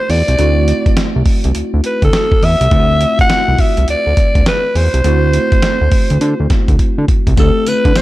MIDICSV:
0, 0, Header, 1, 5, 480
1, 0, Start_track
1, 0, Tempo, 582524
1, 317, Time_signature, 4, 2, 24, 8
1, 6606, End_track
2, 0, Start_track
2, 0, Title_t, "Alto saxophone"
2, 0, Program_c, 0, 65
2, 0, Note_on_c, 0, 72, 102
2, 85, Note_on_c, 0, 74, 98
2, 97, Note_off_c, 0, 72, 0
2, 801, Note_off_c, 0, 74, 0
2, 1531, Note_on_c, 0, 71, 82
2, 1667, Note_off_c, 0, 71, 0
2, 1687, Note_on_c, 0, 69, 96
2, 2013, Note_on_c, 0, 76, 115
2, 2025, Note_off_c, 0, 69, 0
2, 2637, Note_off_c, 0, 76, 0
2, 2645, Note_on_c, 0, 78, 117
2, 2969, Note_on_c, 0, 76, 101
2, 2982, Note_off_c, 0, 78, 0
2, 3203, Note_off_c, 0, 76, 0
2, 3214, Note_on_c, 0, 74, 107
2, 3652, Note_off_c, 0, 74, 0
2, 3690, Note_on_c, 0, 71, 99
2, 3931, Note_on_c, 0, 72, 96
2, 3943, Note_off_c, 0, 71, 0
2, 5364, Note_off_c, 0, 72, 0
2, 6092, Note_on_c, 0, 69, 91
2, 6330, Note_on_c, 0, 71, 98
2, 6342, Note_off_c, 0, 69, 0
2, 6568, Note_on_c, 0, 72, 110
2, 6580, Note_off_c, 0, 71, 0
2, 6606, Note_off_c, 0, 72, 0
2, 6606, End_track
3, 0, Start_track
3, 0, Title_t, "Tine electric piano"
3, 0, Program_c, 1, 4
3, 0, Control_c, 1, 64, 127
3, 0, Note_on_c, 1, 57, 72
3, 0, Note_on_c, 1, 60, 62
3, 0, Note_on_c, 1, 64, 65
3, 0, Note_on_c, 1, 66, 71
3, 285, Note_off_c, 1, 57, 0
3, 288, Note_off_c, 1, 60, 0
3, 291, Note_off_c, 1, 64, 0
3, 294, Note_off_c, 1, 66, 0
3, 316, Note_on_c, 1, 57, 64
3, 321, Note_on_c, 1, 60, 58
3, 328, Note_on_c, 1, 64, 61
3, 335, Note_on_c, 1, 66, 76
3, 2203, Note_off_c, 1, 57, 0
3, 2206, Note_off_c, 1, 60, 0
3, 2210, Note_off_c, 1, 64, 0
3, 2213, Note_off_c, 1, 66, 0
3, 2232, Note_on_c, 1, 57, 64
3, 2240, Note_on_c, 1, 60, 67
3, 2246, Note_on_c, 1, 64, 64
3, 2251, Note_on_c, 1, 65, 61
3, 2305, Note_on_c, 1, 66, 78
3, 2312, Note_off_c, 1, 65, 0
3, 4122, Note_off_c, 1, 57, 0
3, 4126, Note_off_c, 1, 60, 0
3, 4129, Note_off_c, 1, 64, 0
3, 4156, Note_on_c, 1, 57, 70
3, 4158, Note_off_c, 1, 66, 0
3, 4164, Note_on_c, 1, 60, 59
3, 4170, Note_on_c, 1, 64, 66
3, 4177, Note_on_c, 1, 66, 78
3, 6044, Note_off_c, 1, 57, 0
3, 6048, Note_off_c, 1, 60, 0
3, 6051, Note_off_c, 1, 64, 0
3, 6054, Note_off_c, 1, 66, 0
3, 6072, Note_on_c, 1, 57, 76
3, 6079, Note_on_c, 1, 60, 65
3, 6085, Note_on_c, 1, 64, 63
3, 6089, Control_c, 1, 64, 0
3, 6091, Note_on_c, 1, 67, 77
3, 6241, Control_c, 1, 64, 127
3, 6606, Note_off_c, 1, 57, 0
3, 6606, Note_off_c, 1, 60, 0
3, 6606, Note_off_c, 1, 64, 0
3, 6606, Note_off_c, 1, 67, 0
3, 6606, End_track
4, 0, Start_track
4, 0, Title_t, "Analog synth bass"
4, 0, Program_c, 2, 38
4, 78, Note_on_c, 2, 40, 87
4, 187, Note_off_c, 2, 40, 0
4, 233, Note_on_c, 2, 36, 91
4, 294, Note_off_c, 2, 36, 0
4, 320, Note_on_c, 2, 38, 99
4, 600, Note_off_c, 2, 38, 0
4, 954, Note_on_c, 2, 36, 92
4, 1015, Note_off_c, 2, 36, 0
4, 1195, Note_on_c, 2, 36, 91
4, 1256, Note_off_c, 2, 36, 0
4, 1283, Note_on_c, 2, 38, 52
4, 1342, Note_off_c, 2, 38, 0
4, 1431, Note_on_c, 2, 38, 92
4, 1493, Note_off_c, 2, 38, 0
4, 1668, Note_on_c, 2, 38, 86
4, 1731, Note_off_c, 2, 38, 0
4, 1998, Note_on_c, 2, 40, 85
4, 2107, Note_off_c, 2, 40, 0
4, 2149, Note_on_c, 2, 36, 95
4, 2212, Note_off_c, 2, 36, 0
4, 2238, Note_on_c, 2, 38, 105
4, 2519, Note_off_c, 2, 38, 0
4, 2869, Note_on_c, 2, 36, 95
4, 2932, Note_off_c, 2, 36, 0
4, 3110, Note_on_c, 2, 36, 89
4, 3173, Note_off_c, 2, 36, 0
4, 3198, Note_on_c, 2, 38, 49
4, 3259, Note_off_c, 2, 38, 0
4, 3349, Note_on_c, 2, 38, 91
4, 3412, Note_off_c, 2, 38, 0
4, 3588, Note_on_c, 2, 38, 83
4, 3651, Note_off_c, 2, 38, 0
4, 3916, Note_on_c, 2, 40, 92
4, 4025, Note_off_c, 2, 40, 0
4, 4069, Note_on_c, 2, 36, 98
4, 4132, Note_off_c, 2, 36, 0
4, 4157, Note_on_c, 2, 38, 112
4, 4438, Note_off_c, 2, 38, 0
4, 4789, Note_on_c, 2, 38, 88
4, 4852, Note_off_c, 2, 38, 0
4, 5032, Note_on_c, 2, 38, 89
4, 5094, Note_off_c, 2, 38, 0
4, 5119, Note_on_c, 2, 50, 105
4, 5227, Note_off_c, 2, 50, 0
4, 5272, Note_on_c, 2, 38, 92
4, 5334, Note_off_c, 2, 38, 0
4, 5508, Note_on_c, 2, 38, 82
4, 5572, Note_off_c, 2, 38, 0
4, 5753, Note_on_c, 2, 50, 92
4, 5814, Note_off_c, 2, 50, 0
4, 5990, Note_on_c, 2, 36, 97
4, 6053, Note_off_c, 2, 36, 0
4, 6078, Note_on_c, 2, 38, 113
4, 6187, Note_off_c, 2, 38, 0
4, 6316, Note_on_c, 2, 50, 50
4, 6378, Note_off_c, 2, 50, 0
4, 6469, Note_on_c, 2, 50, 87
4, 6532, Note_off_c, 2, 50, 0
4, 6606, End_track
5, 0, Start_track
5, 0, Title_t, "Drums"
5, 79, Note_on_c, 9, 46, 70
5, 161, Note_off_c, 9, 46, 0
5, 233, Note_on_c, 9, 42, 64
5, 315, Note_off_c, 9, 42, 0
5, 318, Note_on_c, 9, 42, 66
5, 400, Note_off_c, 9, 42, 0
5, 559, Note_on_c, 9, 42, 74
5, 641, Note_off_c, 9, 42, 0
5, 709, Note_on_c, 9, 36, 105
5, 710, Note_on_c, 9, 42, 52
5, 792, Note_off_c, 9, 36, 0
5, 793, Note_off_c, 9, 42, 0
5, 797, Note_on_c, 9, 38, 114
5, 798, Note_on_c, 9, 42, 78
5, 879, Note_off_c, 9, 38, 0
5, 881, Note_off_c, 9, 42, 0
5, 1035, Note_on_c, 9, 46, 79
5, 1036, Note_on_c, 9, 36, 83
5, 1117, Note_off_c, 9, 46, 0
5, 1118, Note_off_c, 9, 36, 0
5, 1187, Note_on_c, 9, 42, 59
5, 1270, Note_off_c, 9, 42, 0
5, 1275, Note_on_c, 9, 42, 80
5, 1357, Note_off_c, 9, 42, 0
5, 1514, Note_on_c, 9, 42, 75
5, 1597, Note_off_c, 9, 42, 0
5, 1667, Note_on_c, 9, 36, 96
5, 1667, Note_on_c, 9, 42, 52
5, 1749, Note_off_c, 9, 36, 0
5, 1750, Note_off_c, 9, 42, 0
5, 1756, Note_on_c, 9, 42, 68
5, 1757, Note_on_c, 9, 38, 104
5, 1838, Note_off_c, 9, 42, 0
5, 1840, Note_off_c, 9, 38, 0
5, 1909, Note_on_c, 9, 36, 101
5, 1991, Note_off_c, 9, 36, 0
5, 1999, Note_on_c, 9, 46, 72
5, 2081, Note_off_c, 9, 46, 0
5, 2150, Note_on_c, 9, 42, 68
5, 2232, Note_off_c, 9, 42, 0
5, 2235, Note_on_c, 9, 42, 61
5, 2237, Note_on_c, 9, 36, 110
5, 2318, Note_off_c, 9, 42, 0
5, 2319, Note_off_c, 9, 36, 0
5, 2477, Note_on_c, 9, 42, 75
5, 2560, Note_off_c, 9, 42, 0
5, 2628, Note_on_c, 9, 36, 100
5, 2628, Note_on_c, 9, 42, 52
5, 2711, Note_off_c, 9, 36, 0
5, 2711, Note_off_c, 9, 42, 0
5, 2716, Note_on_c, 9, 38, 111
5, 2717, Note_on_c, 9, 42, 69
5, 2798, Note_off_c, 9, 38, 0
5, 2800, Note_off_c, 9, 42, 0
5, 2953, Note_on_c, 9, 46, 82
5, 2955, Note_on_c, 9, 36, 90
5, 3035, Note_off_c, 9, 46, 0
5, 3037, Note_off_c, 9, 36, 0
5, 3108, Note_on_c, 9, 42, 56
5, 3190, Note_off_c, 9, 42, 0
5, 3195, Note_on_c, 9, 42, 77
5, 3278, Note_off_c, 9, 42, 0
5, 3436, Note_on_c, 9, 42, 73
5, 3437, Note_on_c, 9, 36, 84
5, 3518, Note_off_c, 9, 42, 0
5, 3519, Note_off_c, 9, 36, 0
5, 3586, Note_on_c, 9, 36, 96
5, 3587, Note_on_c, 9, 42, 57
5, 3669, Note_off_c, 9, 36, 0
5, 3670, Note_off_c, 9, 42, 0
5, 3676, Note_on_c, 9, 42, 65
5, 3677, Note_on_c, 9, 38, 107
5, 3758, Note_off_c, 9, 42, 0
5, 3760, Note_off_c, 9, 38, 0
5, 3918, Note_on_c, 9, 46, 68
5, 4000, Note_off_c, 9, 46, 0
5, 4070, Note_on_c, 9, 42, 64
5, 4153, Note_off_c, 9, 42, 0
5, 4156, Note_on_c, 9, 42, 67
5, 4238, Note_off_c, 9, 42, 0
5, 4396, Note_on_c, 9, 42, 82
5, 4478, Note_off_c, 9, 42, 0
5, 4548, Note_on_c, 9, 36, 99
5, 4548, Note_on_c, 9, 42, 51
5, 4630, Note_off_c, 9, 42, 0
5, 4631, Note_off_c, 9, 36, 0
5, 4635, Note_on_c, 9, 38, 107
5, 4636, Note_on_c, 9, 42, 77
5, 4717, Note_off_c, 9, 38, 0
5, 4718, Note_off_c, 9, 42, 0
5, 4874, Note_on_c, 9, 46, 82
5, 4876, Note_on_c, 9, 36, 94
5, 4957, Note_off_c, 9, 46, 0
5, 4958, Note_off_c, 9, 36, 0
5, 5028, Note_on_c, 9, 42, 56
5, 5111, Note_off_c, 9, 42, 0
5, 5118, Note_on_c, 9, 42, 80
5, 5200, Note_off_c, 9, 42, 0
5, 5356, Note_on_c, 9, 42, 75
5, 5357, Note_on_c, 9, 38, 67
5, 5358, Note_on_c, 9, 36, 90
5, 5438, Note_off_c, 9, 42, 0
5, 5440, Note_off_c, 9, 36, 0
5, 5440, Note_off_c, 9, 38, 0
5, 5507, Note_on_c, 9, 36, 101
5, 5508, Note_on_c, 9, 42, 56
5, 5589, Note_off_c, 9, 36, 0
5, 5590, Note_off_c, 9, 42, 0
5, 5596, Note_on_c, 9, 42, 63
5, 5597, Note_on_c, 9, 36, 60
5, 5679, Note_off_c, 9, 36, 0
5, 5679, Note_off_c, 9, 42, 0
5, 5837, Note_on_c, 9, 36, 88
5, 5838, Note_on_c, 9, 42, 74
5, 5919, Note_off_c, 9, 36, 0
5, 5920, Note_off_c, 9, 42, 0
5, 5990, Note_on_c, 9, 36, 103
5, 5991, Note_on_c, 9, 42, 62
5, 6072, Note_off_c, 9, 36, 0
5, 6074, Note_off_c, 9, 42, 0
5, 6076, Note_on_c, 9, 42, 70
5, 6077, Note_on_c, 9, 36, 107
5, 6077, Note_on_c, 9, 54, 66
5, 6159, Note_off_c, 9, 36, 0
5, 6159, Note_off_c, 9, 42, 0
5, 6159, Note_off_c, 9, 54, 0
5, 6315, Note_on_c, 9, 54, 69
5, 6316, Note_on_c, 9, 42, 77
5, 6398, Note_off_c, 9, 54, 0
5, 6399, Note_off_c, 9, 42, 0
5, 6469, Note_on_c, 9, 36, 108
5, 6469, Note_on_c, 9, 42, 54
5, 6551, Note_off_c, 9, 36, 0
5, 6551, Note_off_c, 9, 42, 0
5, 6554, Note_on_c, 9, 54, 91
5, 6555, Note_on_c, 9, 38, 120
5, 6557, Note_on_c, 9, 42, 76
5, 6606, Note_off_c, 9, 38, 0
5, 6606, Note_off_c, 9, 42, 0
5, 6606, Note_off_c, 9, 54, 0
5, 6606, End_track
0, 0, End_of_file